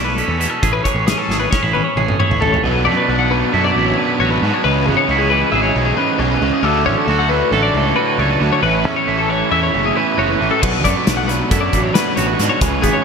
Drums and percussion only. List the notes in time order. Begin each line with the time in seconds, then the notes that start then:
0.18 closed hi-hat
0.41 closed hi-hat
0.63 kick, closed hi-hat
0.85 kick, closed hi-hat
1.08 snare, closed hi-hat
1.30 snare
1.53 kick, snare
1.75 high tom
1.97 mid tom
2.08 mid tom
2.20 mid tom
2.31 floor tom
2.42 floor tom
2.54 floor tom
10.63 kick, crash
10.85 kick, closed hi-hat
11.07 snare, closed hi-hat
11.29 snare, closed hi-hat
11.51 kick, closed hi-hat
11.73 kick, closed hi-hat
11.95 snare, closed hi-hat
12.17 closed hi-hat
12.39 snare, closed hi-hat
12.61 kick, closed hi-hat
12.83 kick, closed hi-hat